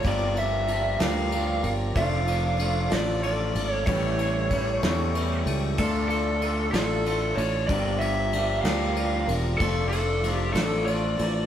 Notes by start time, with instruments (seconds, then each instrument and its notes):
Already playing: tonewheel organ F4
0.03 fingered electric bass G1, clean electric guitar G2 D3 F3 A#3 D4 G4, steel-string acoustic guitar G3 F4 A#4, tonewheel organ G4 A#5, kick, ride
0.08 lead electric guitar D5
0.35 clean electric guitar F3 A#3 D4 G4, lead electric guitar E5, ride
0.67 clean electric guitar F3 A#3 D4 G4, steel-string acoustic guitar G3 F4 A#4, ride
0.99 fingered electric bass D2, clean electric guitar G2 D3 F3 A#3 D4 G4, steel-string acoustic guitar G3 F4 A#4, lead electric guitar F5, snare, ride
1.32 clean electric guitar F3 A#3 D4 G4, ride
1.63 fingered electric bass G1, steel-string acoustic guitar D4 F4 A#4, ride
1.96 fingered electric bass F1, clean electric guitar F3 A3 D4 F4, tonewheel organ A4 F5 D6, steel-string acoustic guitar A4, lead electric guitar F5, kick, ride
2.27 clean electric guitar A3 D4 F4, ride
2.59 clean electric guitar F3 A3 D4 F4, steel-string acoustic guitar A4, ride
2.90 fingered electric bass A1, clean electric guitar D4 F4, steel-string acoustic guitar A4, lead electric guitar D5, snare, ride
2.94 clean electric guitar F3 A3
3.23 clean electric guitar F3 A3 D4 F4, lead electric guitar D5, ride
3.54 fingered electric bass G#1, steel-string acoustic guitar D4 F4 A4, ride
3.70 lead electric guitar C#5
3.87 fingered electric bass A1, clean electric guitar A2 E3 G3 C#4 E4, steel-string acoustic guitar A4, tonewheel organ A4 G5 C#6, lead electric guitar C#5, kick, ride
4.19 clean electric guitar G3 C#4 E4, ride
4.50 clean electric guitar E3 G3 C#4 E4, steel-string acoustic guitar A4, kick, ride
4.83 fingered electric bass E2, clean electric guitar A2 E3 G3 C#4 E4, steel-string acoustic guitar A4, snare, ride
5.15 clean electric guitar E3 G3 C#4 E4, ride
5.46 fingered electric bass C#2, steel-string acoustic guitar G3 C#4 E4 A4, ride
5.77 fingered electric bass D2, clean electric guitar D3 A3 D4 F4, tonewheel organ A4 F5 A5, lead electric guitar A4, steel-string acoustic guitar A4, kick, crash
6.08 clean electric guitar A3 D4 F4, lead electric guitar A4, ride
6.40 clean electric guitar D3 A3 D4 F4, steel-string acoustic guitar A4, ride
6.72 fingered electric bass A1, clean electric guitar D3 A3 D4 F4, lead electric guitar A4, steel-string acoustic guitar A4, snare, ride
7.05 clean electric guitar D3 A3 D4 F4, ride
7.35 fingered electric bass A1, steel-string acoustic guitar D4 F4 A4, lead electric guitar C#5, ride
7.67 fingered electric bass G1, clean electric guitar G2 D3 F3 A#3 D4 G4, steel-string acoustic guitar G3 F4 A#4, tonewheel organ F4 G4 A#5, lead electric guitar D5, kick, ride
7.99 clean electric guitar F3 A#3 D4 G4, lead electric guitar E5, ride
8.32 clean electric guitar F3 A#3 D4 G4, steel-string acoustic guitar G3 F4 A#4, ride
8.61 fingered electric bass D2, clean electric guitar F3 A#3 D4 G4, steel-string acoustic guitar A#4, lead electric guitar F5, ride
8.65 clean electric guitar G2 D3, steel-string acoustic guitar G3 F4, snare
8.95 clean electric guitar F3 A#3 D4 G4, ride
9.27 fingered electric bass E1, steel-string acoustic guitar D4 F4 A#4, ride
9.58 fingered electric bass F1, clean electric guitar F3 A3 D4 F4, lead electric guitar A4, tonewheel organ A4 D6, kick, ride
9.62 steel-string acoustic guitar A4
9.89 clean electric guitar D4 F4, lead electric guitar A4, ride
9.94 clean electric guitar A3
10.23 clean electric guitar F3 A3 D4 F4, steel-string acoustic guitar A4, ride
10.35 lead electric guitar G4
10.53 fingered electric bass A1, clean electric guitar F3 A3 D4 F4, lead electric guitar A4, steel-string acoustic guitar A4, snare, ride
10.85 clean electric guitar F3 A3 D4 F4, lead electric guitar D5, ride
11.17 fingered electric bass A1, steel-string acoustic guitar D4 F4 A4, ride